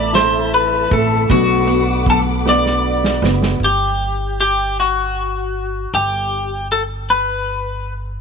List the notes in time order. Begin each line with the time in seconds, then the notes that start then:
Already playing: A1 E3 A3 B3 C4 E4 A4 D5 E5 A5 B5
0.13 A2 E3 C4 E4 C5, snare, closed hi-hat
0.53 B4, closed hi-hat
0.91 A1 A3 B3 C4 E4 A4, kick, closed hi-hat
1.29 B1 B2 F#3 A3 B3 D4 F#4 F#5 D6, kick, closed hi-hat
1.67 B3, closed hi-hat
2.06 F#3 A3 B3 D4 F#4 A4, kick, closed hi-hat
2.45 B2 F#3 A3 B3 D4 F#4 D5, snare
2.66 snare
3.04 snare
3.22 F#1 A3 B3 D4 F#4, snare
3.43 snare
3.60 G1
3.65 G4
4.41 G4
4.80 F#4
5.93 G1 G4
6.72 A4
7.10 B4